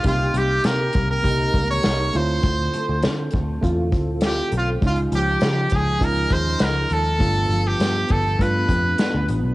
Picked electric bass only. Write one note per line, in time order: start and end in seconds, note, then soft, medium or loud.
0.04 0.29 C2 medium
0.34 0.58 C2 medium
0.65 0.89 C3 medium
0.95 1.19 C2 medium
1.24 1.48 C2 medium
1.54 1.78 C#2 medium
1.86 2.09 C2 medium
2.15 2.38 D2 medium
2.44 2.67 D2 medium
2.89 3.06 D2 medium
3.04 3.28 D3 medium
3.33 3.57 D2 medium
3.62 3.92 E2 medium
3.92 4.40 D2 medium
4.52 4.76 B1 medium
4.82 5.06 C#2 medium
5.12 5.36 C#2 medium
5.43 5.66 C#3 loud
5.72 5.96 C#2 medium
6.01 6.25 C#2 medium
6.31 6.55 D#2 medium
6.61 6.85 C#2 medium
6.91 7.22 D#2 medium
7.20 7.44 G1 medium
7.49 7.73 G1 medium
7.80 8.04 G2 medium
8.11 8.34 G1 medium
8.39 8.63 G2 loud
8.69 8.93 F2 medium
9.15 9.26 D2 medium
9.29 9.41 A1 medium
9.44 9.54 B1 medium